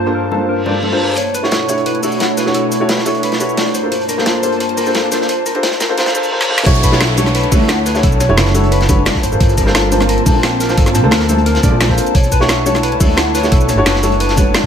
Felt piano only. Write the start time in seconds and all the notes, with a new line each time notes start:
0.06 G2 A#3 D4 F4 A4 C5
0.31 G2 A#3 D4 F4 C5 A5
0.66 G2 A#3 D4 F4 A4 D5
0.91 G2 A#3 D4 F4 A4 C5
1.43 A3 D4 E4 F#4 C#5
1.68 A3 D4 E4 F#4 C#5
2.02 A3 D4 E4 F#4 C#5
2.46 A3 D4 E4 F#4 C#5
2.80 A3 D4 E4 F#4 C#5
3.06 A3 D4 E4 F#4 C#5
3.40 A3 D4 E4 F#4 C#5
3.83 A#3 D4 F4 A4 C5
4.17 A#3 D4 F4 A4 C5
4.43 A#3 D4 F4 A4 C5
4.86 A#3 D4 F4 A4 C5
5.11 A#3 D4 F4 A4 C5
5.54 A#3 D4 F4 A4 C5
5.89 A#3 D4 F4 A4 C5
5.97 A#3 D4 F4 A4 C5
6.14 A#3 D4 F4 A4 C5
6.31 A#3 D4 F4 A4 C5
6.49 A#3 D4 F4 A4 C5
6.66 A3 D4 E4 F#4 C#5
6.92 A3 D4 E4 F#4 C#5
7.17 A3 D4 E4 F#4 C#5
7.51 A3 D4 E4 F#4 C#5
7.94 A3 D4 E4 F#4 C#5
8.29 A3 D4 E4 F#4 C#5
8.54 A3 D4 E4 F#4 C#5
8.89 A3 D4 E4 F#4 C#5
9.32 A#3 D4 F4 A4 C5
9.66 A#3 D4 F4 A4 C5
9.91 A#3 D4 F4 C5 A5
10.25 A#3 D4 F4 C5 A5
10.69 A#3 D4 F4 C5 A5
11.03 A#3 D4 F4 A4 C5
11.29 A#3 D4 F4 C5 A5
11.63 A#3 D4 F4 A4 D5
11.89 A#3 D4 F4 A4 C5
12.40 A3 D4 E4 F#4 C#5
12.66 A3 D4 E4 F#4 C#5
12.99 A3 D4 E4 F#4 C#5
13.43 A3 D4 E4 F#4 C#5
13.77 A3 D4 E4 F#4 C#5
14.03 A3 D4 E4 F#4 C#5
14.37 A3 D4 E4 F#4 C#5